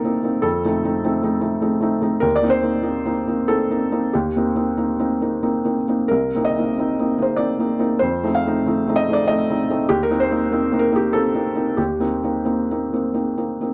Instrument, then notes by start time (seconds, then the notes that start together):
felt piano
Already playing: A#3 C4 D#4 A4 A#4 C5
0.04 A#3 C4 D#4
0.23 A#3 C4 D#4
0.42 F2 A4
0.65 A3 C4 D#4
0.84 A3 C4 D#4
1.04 A3 C4 D#4
1.23 A3 C4 D#4
1.41 A3 C4 D#4
1.61 A3 C4 D#4
1.81 A3 C4 D#4
2.01 A3 C4 D#4
2.20 D#2 A#4
2.36 D5
2.42 A#3 C4 D#4
2.50 C5
2.62 A#3 C4 D#4
2.83 A#3 C4 D#4
3.05 A#3 C4 D#4
3.27 A#3 C4 D#4
3.48 A#3 C4 D#4 A4
3.70 A#3 C4 D#4
3.92 A#3 C4 D#4
4.13 D#2 G4
4.36 A#3 C4 D#4
4.55 A#3 C4 D#4
4.77 A#3 C4 D#4
4.99 A#3 C4 D#4
5.21 A#3 C4 D#4
5.43 A#3 C4 D#4
5.64 A#3 C4 D#4
5.88 A#3 C4 D#4
6.08 C2 A#4
6.35 A#3 C4 D#4
6.45 D#5
6.58 A#3 C4 D#4
6.78 A#3 C4 D#4
6.99 A#3 C4 D#4
7.18 A#3 C4 D#4
7.22 C5
7.36 A#3 C4 D#4 D5
7.59 A#3 C4 D#4
7.79 A#3 C4 D#4
7.99 F2 C5
8.24 A3 C4 D#4
8.35 F5
8.47 A3 C4 D#4
8.66 A3 C4 D#4
8.88 A3 C4 D#4
8.96 D#5
9.09 A3 C4 D#4
9.13 D5
9.28 A3 C4 D#4 D#5
9.50 A3 C4 D#4
9.70 A3 C4 D#4
9.89 D#2 G4
10.03 A#4
10.10 A#3 C4 D#4
10.20 C5
10.31 A#3 C4 D#4
10.52 A#3 C4 D#4
10.72 A#3 C4 D#4
10.79 A#4
10.92 A#3 C4 D#4 G4
11.13 A#3 C4 D#4 A4
11.34 A#3 C4 D#4
11.55 A#3 C4 D#4
11.77 D#2 G4
12.00 A#3 C4 D#4
12.23 A#3 C4 D#4
12.45 A#3 C4 D#4
12.71 A#3 C4 D#4
12.93 A#3 C4 D#4
13.14 A#3 C4 D#4
13.37 A#3 C4 D#4
13.61 A#3 C4 D#4